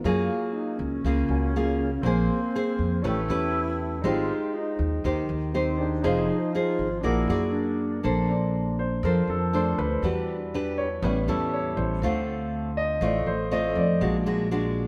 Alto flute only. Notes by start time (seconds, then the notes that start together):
0.04 A#3
0.53 D#4
0.78 C#4
2.02 C4
3.01 E4
4.03 F4
4.54 D#4
5.52 C4
5.78 D4
6.03 D#4
6.53 F4
7.02 E4
7.52 D4